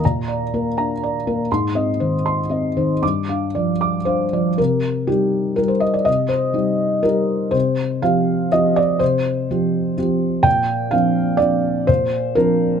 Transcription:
0.05 A#2 A#5
0.28 D5
0.54 A#3 A#4
0.77 D4 A#5
1.03 D5
1.27 A#3 A#4
1.52 G#2 C6
1.75 C4 D#5
2.00 D#3 C5
2.26 C6
2.49 C4 D#5
2.77 D#3 C5
3.02 G2 D6
3.29 D4 F5
3.55 F3 D5
3.81 D6
4.05 D4 C5 F5
4.33 F3 D5
4.58 C3 A#4
5.07 G3 D#4 G4
5.56 G3 D#4 G4 A#4
5.68 C5
5.80 D#5
5.94 D5
6.05 C3 D#5
6.29 C5
6.53 G3 D#4 G4
7.03 G3 D#4 G4 A#4
7.51 C3 C5
8.02 F3 C4 G4 F5
8.52 F3 C4 G4 D#5
8.76 D5
8.99 C3 C5
9.51 F3 C4 G4
9.97 F3 C4 G4
10.43 A#2 G5
10.91 F3 C4 D4 F5
11.37 F3 C4 D4 D5
11.87 A#2 C5
12.35 F3 C4 D4 A#4

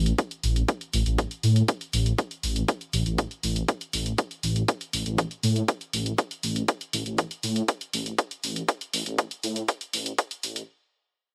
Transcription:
Already playing: A1
0.06 closed hi-hat
0.18 kick, closed hi-hat
0.31 closed hi-hat
0.43 A1, open hi-hat
0.56 closed hi-hat
0.68 kick, closed hi-hat
0.81 closed hi-hat
0.93 A1, open hi-hat
1.06 A1, closed hi-hat
1.18 kick, closed hi-hat
1.31 closed hi-hat
1.43 A2, open hi-hat
1.56 closed hi-hat
1.68 kick, closed hi-hat
1.81 closed hi-hat
1.93 A1, open hi-hat
2.06 closed hi-hat
2.18 kick, closed hi-hat
2.31 closed hi-hat
2.43 A1, open hi-hat
2.56 closed hi-hat
2.68 kick, closed hi-hat
2.81 closed hi-hat
2.93 A1, open hi-hat
3.06 A1, closed hi-hat
3.18 kick, closed hi-hat
3.31 closed hi-hat
3.43 A1, open hi-hat
3.56 closed hi-hat
3.68 kick, closed hi-hat
3.81 closed hi-hat
3.93 A1, open hi-hat
4.06 closed hi-hat
4.18 kick, closed hi-hat
4.31 closed hi-hat
4.43 A1, open hi-hat
4.56 closed hi-hat
4.68 kick, closed hi-hat
4.81 closed hi-hat
4.93 A1, open hi-hat
5.06 A1, closed hi-hat
5.18 kick, closed hi-hat
5.31 closed hi-hat
5.43 A2, open hi-hat
5.56 closed hi-hat
5.68 kick, closed hi-hat
5.81 closed hi-hat
5.93 A1, open hi-hat
6.06 closed hi-hat
6.18 kick, closed hi-hat
6.31 closed hi-hat
6.43 A1, open hi-hat
6.56 closed hi-hat
6.68 kick, closed hi-hat
6.81 closed hi-hat
6.93 A1, open hi-hat
7.06 A1, closed hi-hat
7.18 kick, closed hi-hat
7.31 closed hi-hat
7.43 A2, open hi-hat
7.56 closed hi-hat
7.68 kick, closed hi-hat
7.81 closed hi-hat
7.93 A1, open hi-hat
8.06 closed hi-hat
8.18 kick, closed hi-hat
8.31 closed hi-hat
8.44 A1, open hi-hat
8.56 closed hi-hat
8.68 kick, closed hi-hat
8.81 closed hi-hat
8.94 A1, open hi-hat
9.06 A1, closed hi-hat
9.18 kick, closed hi-hat
9.31 closed hi-hat
9.43 A2, open hi-hat
9.56 closed hi-hat
9.68 kick, closed hi-hat
9.81 closed hi-hat
9.93 A1, open hi-hat
10.06 closed hi-hat
10.18 kick, closed hi-hat
10.31 closed hi-hat
10.43 A1, open hi-hat
10.56 closed hi-hat

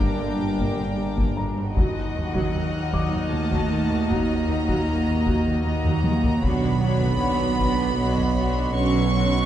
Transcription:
Already playing: G1 G3 A#3 D4 A#4 G5 A5 A#5 D6 F#6
0.00 A#3, taiko
0.18 G2 D3
0.39 G2 G3
0.58 G2 A#3, taiko
0.76 G2 D3
0.96 G2 G3
1.15 G2 A#3, taiko
1.36 G2 D3 A#5
1.56 G2 G3
1.74 D#2 A#2 F#3 D#4 F#4 D#5 D#6 F#6, taiko
2.13 D#2 D#3 F#3 F#5
2.33 D#2 F#3, taiko
2.53 D#2 D#3 F6
2.72 D#2 D#3
2.91 D#2 F#3 D6, taiko
3.10 D#2 D#3
3.30 D#2 D#3 A3 A5
3.50 D#2 F#3, taiko
3.69 D#2 D#3
3.89 D#2 D#3
4.08 D#2 F#3 A#3 A#5, taiko
4.47 D#2 D#3
4.67 D#2 F#3, taiko
4.88 D#2 D#3
5.07 D#2 D#3
5.25 D#2 F#3, taiko
5.46 D#2 D#3
5.65 D#2 D#3 A#3 A#5
5.84 D#2 F#3, taiko low-mid
6.04 D#2 D#3, taiko high
6.23 D#2 D#3, taiko low
6.41 B1 F#3 B3 D4 F#4 C#5 B5, taiko
6.81 F#3 D4 F#4 C#5
7.01 taiko
7.19 B1 F#3 D4 F#4 C#5 C6
7.58 F#3 D4 F#4 C#5, taiko
7.97 B1 F#3 D4 F#4 C#5
8.17 taiko
8.36 F#3 D4 F#4 C#5
8.74 B1 D3 F#3 C#4 F#4 C#5 C#6
9.13 D3 F#3 F#4 C#5

